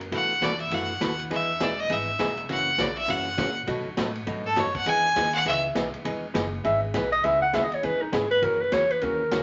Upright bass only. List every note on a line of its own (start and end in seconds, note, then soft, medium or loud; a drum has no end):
0.00 0.11 F#2 medium
0.12 0.40 B2 medium
0.41 0.70 E2 medium
0.70 1.00 F#2 medium
1.01 1.30 D#2 medium
1.30 1.59 E2 medium
1.60 1.89 E1 medium
1.90 2.19 G#1 medium
2.20 2.48 E1 medium
2.49 2.78 F#1 medium
2.78 3.07 A#1 medium
3.08 3.37 F#2 medium
3.37 3.66 A#2 medium
3.67 3.84 B2 medium
3.86 muted upright bass stroke soft
3.97 4.26 A2 medium
4.27 4.56 G#2 medium
4.57 4.85 F#2 medium
4.86 5.15 E2 medium
5.16 5.45 D#2 medium
5.45 5.74 C#2 medium
5.75 5.92 B1 loud
5.94 muted upright bass stroke soft
6.05 6.34 E1 medium
6.35 6.64 F#1 loud
6.64 6.93 G#1 medium
6.94 7.23 B1 medium
7.24 7.52 C#2 medium
7.54 7.82 D#2 medium
7.83 8.00 E2 medium
8.01 muted upright bass stroke soft
8.12 8.41 G#2 medium
8.42 8.71 F#2 medium
8.72 9.01 E2 medium
9.02 9.31 D#2 medium
9.32 9.43 C#2 medium